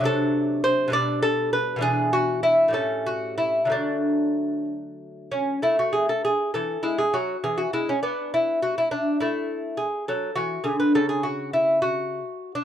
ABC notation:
X:1
M:6/8
L:1/16
Q:3/8=67
K:D
V:1 name="Lute"
A4 =c2 d2 A2 B2 | ^G2 F2 E2 A2 F2 E2 | D6 z4 C2 | [K:A] E F G A G2 A2 E G F2 |
G F E C D2 E2 F E D2 | E4 G2 A2 F2 G B | A G F2 E2 F4- F D |]
V:2 name="Lute" clef=bass
[=C,F,D]6 [B,,G,D]6 | [B,,E,D]6 [A,,G,C]6 | [D,F,A,]12 | [K:A] A,6 E,2 G,2 F,2 |
E,2 G,2 B,8 | A,6 F,2 E,2 D,2 | C,12 |]